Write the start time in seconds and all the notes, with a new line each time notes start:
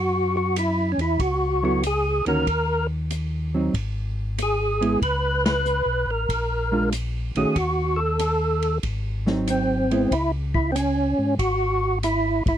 Already playing: F#2 F#4
0.37 F#4
0.56 E4, hi-hat pedal, ride
0.92 C#4
0.98 E2 E4, ride
1.19 C#2 F#4, kick, ride
1.63 F#3 B3 E4 F#4 A4
1.83 G#4, hi-hat pedal, ride
2.26 D2 D#3 A#3 C#4 F#4 A#4, ride
2.46 D#2, kick, ride
3.10 hi-hat pedal, ride
3.54 F#3 C4 D#4
3.74 G#1, kick, ride
4.38 hi-hat pedal, ride
4.42 G#4
4.81 G#3 B3 E4, ride
5.02 C#2 B4, kick, ride
5.46 B4, snare, ride
5.66 hi-hat pedal
5.85 B1
6.06 A1
6.11 A#4
6.29 A#1, kick, ride
6.72 G#3 D4 F4
6.92 hi-hat pedal, ride
7.35 A#1 D#3 A3 C#4 F#4 G#4, ride
7.55 D#2 F#4, kick, ride
7.96 A4
8.19 hi-hat pedal, ride
8.62 ride
8.83 G#1, kick, ride
9.26 F#3 C4 D#4, snare
9.47 C4, hi-hat pedal, ride
9.91 G#3 B3 E4, ride
10.11 C#2 E4, kick, ride
10.55 E4, kick
10.72 C4 C#4, hi-hat pedal, ride
11.19 G#2
11.39 G#1 F#4, kick, ride
12.03 E4, hi-hat pedal, ride
12.46 G1 E4, kick, ride